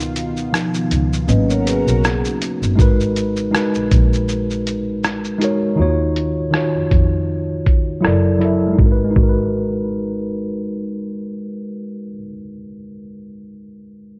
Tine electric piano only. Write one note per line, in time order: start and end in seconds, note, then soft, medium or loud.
0.53 1.05 F3 medium
0.53 1.05 B3 soft
0.53 1.05 D#4 medium
1.28 1.80 F#3 medium
1.28 1.80 A#3 medium
1.28 1.80 B3 medium
1.28 1.80 C#4 medium
2.76 3.36 G#3 medium
2.76 3.37 D#4 medium
2.76 3.38 F#4 medium
2.80 3.38 A#4 medium
2.80 3.39 B4 medium
3.51 4.67 G#3 medium
3.51 4.68 D#4 medium
3.51 4.69 F#4 medium
3.56 4.69 A#4 medium
3.56 4.70 B4 medium
5.38 5.69 G#3 medium
5.38 5.70 D#4 medium
5.38 5.71 F#4 medium
5.43 5.72 A#4 medium
5.43 5.72 C#5 medium
5.76 6.36 D#3 medium
5.76 6.37 D#4 medium
5.76 6.38 F4 medium
5.80 6.39 F#4 medium
5.80 6.39 C#5 medium
6.51 7.67 D#3 medium
6.51 7.68 D#4 medium
6.51 7.69 F4 medium
6.56 7.69 F#4 medium
6.56 7.70 C#5 medium
8.01 8.33 F#3 medium
8.01 8.34 E4 medium
8.01 8.35 A4 medium
8.05 8.35 A#4 medium
8.05 8.36 D5 medium
8.39 8.70 F#3 medium
8.39 8.70 E4 medium
8.39 8.71 A4 medium
8.43 8.72 A#4 medium
8.43 8.73 E5 medium
8.67 8.95 G#3 medium
8.73 8.98 D#4 medium
8.79 9.02 F#4 medium
8.86 9.05 A#4 medium
8.92 9.08 B4 medium
9.04 12.03 G#3 medium
9.10 12.09 D#4 medium
9.17 12.16 F#4 medium
9.23 12.22 A#4 medium
9.29 12.28 B4 medium